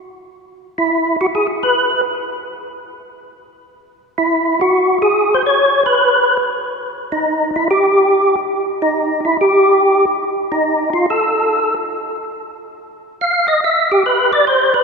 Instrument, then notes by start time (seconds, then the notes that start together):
tonewheel organ
0.78 E4
1.21 F#4
1.35 G#4
1.63 B4
4.18 E4
4.61 F#4
5.02 G#4
5.34 C5
5.46 C#5
5.86 B4
7.12 D#4
7.56 E4
7.71 G4
8.82 D#4
9.25 E4
9.41 G4
10.52 D#4
10.93 F4
11.10 A4
13.21 F5
13.48 D#5
13.64 E5
13.92 G4
14.06 B4
14.33 D5
14.47 C5
14.74 B4